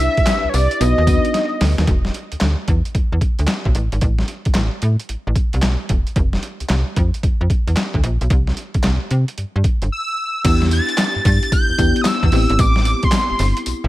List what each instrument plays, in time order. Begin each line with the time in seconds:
Already playing: fm electric piano D4 E4 G4 B4, analog synth lead E5
0.00 closed hi-hat, tambourine
0.17 kick, closed hi-hat
0.26 snare, clap, closed hi-hat, tambourine
0.44 fm bass C2
0.49 analog synth lead C#5
0.54 fm bass C2, analog synth lead D5, open hi-hat, tambourine
0.71 closed hi-hat
0.80 fm bass B1, fm electric piano B3 D#4 F#4 B4, analog synth lead D#5, closed hi-hat, tambourine
0.98 fm bass D#2
1.07 fm electric piano B3 D4 F#4 B4, kick, closed hi-hat, tambourine
1.14 fm electric piano D#4
1.25 closed hi-hat
1.34 snare, closed hi-hat
1.61 fm bass D2, snare, open hi-hat
1.78 fm bass D#2, snare, closed hi-hat
1.87 fm bass E1, kick, closed hi-hat
2.05 snare
2.14 closed hi-hat
2.32 fm bass D2, closed hi-hat
2.41 fm bass D2, snare, clap, closed hi-hat
2.68 fm bass E2, kick, closed hi-hat
2.85 closed hi-hat
2.95 fm bass E2, kick, closed hi-hat
3.12 fm bass E2
3.21 kick, closed hi-hat
3.39 fm bass D2, closed hi-hat
3.47 snare, clap, closed hi-hat
3.65 fm bass B1, kick
3.75 fm bass A1, closed hi-hat
3.92 fm bass G#1, closed hi-hat
4.01 fm bass A1, kick, closed hi-hat
4.19 snare
4.28 closed hi-hat
4.45 fm bass A1, kick, closed hi-hat
4.54 fm bass A1, snare, clap, closed hi-hat
4.82 fm bass A2, closed hi-hat
5.00 closed hi-hat
5.09 fm bass A1, closed hi-hat
5.27 fm bass A1
5.36 kick, closed hi-hat
5.53 fm bass C2, closed hi-hat
5.62 fm bass B1, snare, clap, closed hi-hat
5.89 fm bass E1, kick, closed hi-hat
6.07 closed hi-hat
6.16 fm bass F1, kick, closed hi-hat
6.33 snare
6.43 closed hi-hat
6.60 fm bass C2, closed hi-hat
6.69 fm bass C2, snare, clap, closed hi-hat
6.96 fm bass F2, kick, closed hi-hat
7.14 closed hi-hat
7.23 fm bass F2, kick, closed hi-hat
7.41 fm bass F2
7.50 kick, closed hi-hat
7.67 fm bass E2, closed hi-hat
7.76 snare, clap, closed hi-hat
7.94 fm bass D2, kick
8.04 fm bass A#1, closed hi-hat
8.21 fm bass B1, closed hi-hat
8.30 fm bass C2, kick, closed hi-hat
8.47 snare
8.57 closed hi-hat
8.74 fm bass C2, kick, closed hi-hat
8.83 fm bass C2, snare, clap, closed hi-hat
9.11 fm bass C3, closed hi-hat
9.28 closed hi-hat
9.38 fm bass G2, closed hi-hat
9.56 fm bass G2
9.64 kick, closed hi-hat
9.82 fm bass G1, closed hi-hat
9.92 analog synth lead E6
10.44 fm bass E2, fm electric piano B3 D4 E4 G4, analog synth lead E6, kick, closed hi-hat, crash, tambourine
10.62 snare
10.71 analog synth lead A6, closed hi-hat, tambourine
10.89 closed hi-hat
10.98 snare, clap, closed hi-hat, tambourine
11.16 fm bass G2
11.25 fm bass G2, analog synth lead A6, kick, open hi-hat, tambourine
11.43 closed hi-hat
11.52 analog synth lead G6, kick, closed hi-hat, tambourine
11.70 fm bass E2
11.78 fm bass E2, fm electric piano B3 D4 E4 G4, kick, closed hi-hat, tambourine
11.96 closed hi-hat
12.01 analog synth lead D#6, snare, clap, closed hi-hat, tambourine
12.07 analog synth lead E6
12.23 fm bass E2, kick
12.32 fm bass A1, fm electric piano B3 C4 E4 G4, open hi-hat
12.50 fm bass G#1, closed hi-hat
12.59 fm bass A1, analog synth lead D6, kick, closed hi-hat, tambourine
12.76 snare
12.85 closed hi-hat, tambourine
13.03 analog synth lead C6, kick, closed hi-hat
13.12 snare, clap, closed hi-hat, tambourine
13.30 fm bass G1
13.39 fm bass G1, open hi-hat, tambourine
13.57 closed hi-hat
13.66 fm bass B1, closed hi-hat, tambourine
13.84 fm bass B1